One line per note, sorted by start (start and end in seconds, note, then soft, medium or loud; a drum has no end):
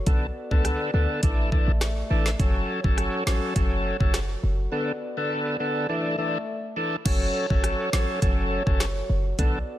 0.00 1.20 F#4 medium
0.00 7.02 A4 medium
0.06 0.31 B1 loud
0.06 0.26 D3 medium
0.06 1.22 B3 medium
0.06 0.26 B3 medium
0.06 0.27 A4 loud
0.06 2.37 D5 medium
0.06 kick loud
0.06 closed hi-hat medium
0.51 0.75 C#2 medium
0.51 0.91 D3 medium
0.51 0.91 B3 medium
0.51 0.91 A4 medium
0.51 kick medium
0.65 cross-stick medium
0.65 closed hi-hat medium
0.94 1.06 D2 loud
0.94 1.21 D3 medium
0.94 1.21 B3 medium
0.94 1.21 A4 medium
1.23 1.60 A1 loud
1.23 1.50 E3 medium
1.23 2.39 A3 medium
1.23 1.50 D4 medium
1.23 1.50 A4 loud
1.23 2.39 E5 medium
1.23 kick medium
1.23 closed hi-hat medium
1.51 1.72 E3 medium
1.51 1.72 D4 medium
1.51 1.72 A4 medium
1.51 kick loud
1.68 2.03 A1 medium
1.81 cross-stick medium
1.81 snare loud
1.81 closed hi-hat medium
2.10 2.34 A1 loud
2.10 2.30 E3 medium
2.10 2.30 D4 medium
2.10 2.30 A4 medium
2.26 snare medium
2.39 2.63 F#1 loud
2.39 2.80 F#3 loud
2.39 4.70 F#3 medium
2.39 2.80 C#4 medium
2.39 5.86 F#4 medium
2.39 2.81 A4 loud
2.39 4.70 C#5 medium
2.39 kick loud
2.39 closed hi-hat medium
2.84 3.08 G1 medium
2.84 3.24 F#3 medium
2.84 3.24 C#4 medium
2.84 3.24 A4 medium
2.84 kick medium
2.98 cross-stick medium
2.98 closed hi-hat medium
3.27 3.39 A1 medium
3.27 3.54 F#3 medium
3.27 3.54 C#4 medium
3.27 3.54 A4 medium
3.27 snare loud
3.55 3.92 F#1 loud
3.55 3.97 F#3 medium
3.55 3.97 C#4 medium
3.55 3.97 A4 loud
3.55 kick medium
3.55 closed hi-hat medium
4.00 4.36 F#1 medium
4.00 4.19 F#3 medium
4.00 4.19 C#4 medium
4.00 4.19 A4 medium
4.00 kick loud
4.14 cross-stick medium
4.14 snare loud
4.14 closed hi-hat medium
4.43 4.67 F#1 medium
4.72 4.92 D3 medium
4.72 4.92 B3 medium
4.72 5.88 B3 medium
4.72 4.92 A4 loud
4.72 6.89 D5 medium
5.17 5.57 D3 medium
5.17 5.57 B3 medium
5.17 5.57 A4 medium
5.60 5.87 D3 medium
5.60 5.87 B3 medium
5.60 5.87 A4 medium
5.89 6.16 E3 loud
5.89 6.89 A3 medium
5.89 6.16 D4 medium
5.89 6.16 A4 loud
5.89 6.89 E5 medium
6.18 6.38 E3 medium
6.18 6.38 D4 medium
6.18 6.38 A4 medium
6.76 6.96 E3 medium
6.76 6.96 D4 medium
6.76 6.96 A4 medium
7.05 7.29 F#1 loud
7.05 7.46 F#3 medium
7.05 9.36 F#3 medium
7.05 7.46 C#4 medium
7.05 9.79 F#4 medium
7.05 7.47 A4 loud
7.05 9.36 A4 medium
7.05 9.36 C#5 medium
7.05 kick loud
7.05 closed hi-hat medium
7.05 crash loud
7.50 7.74 G1 medium
7.50 7.90 F#3 medium
7.50 7.90 C#4 medium
7.50 7.90 A4 medium
7.50 kick medium
7.64 cross-stick medium
7.64 closed hi-hat medium
7.93 8.06 A1 medium
7.93 8.20 F#3 medium
7.93 8.20 C#4 medium
7.93 8.20 A4 medium
7.93 snare loud
8.22 8.59 F#1 loud
8.22 8.63 F#3 medium
8.22 8.63 C#4 medium
8.22 8.63 A4 loud
8.22 kick medium
8.22 closed hi-hat medium
8.66 9.02 F#1 medium
8.66 8.85 F#3 medium
8.66 8.85 C#4 medium
8.66 8.85 A4 medium
8.66 kick medium
8.80 cross-stick medium
8.80 snare loud
8.80 closed hi-hat medium
9.10 9.33 F#1 loud
9.39 9.62 B1 loud
9.39 9.58 D3 medium
9.39 9.79 B3 medium
9.39 9.59 B3 medium
9.39 9.79 A4 medium
9.39 9.59 A4 loud
9.39 9.79 D5 medium
9.39 kick loud
9.39 closed hi-hat medium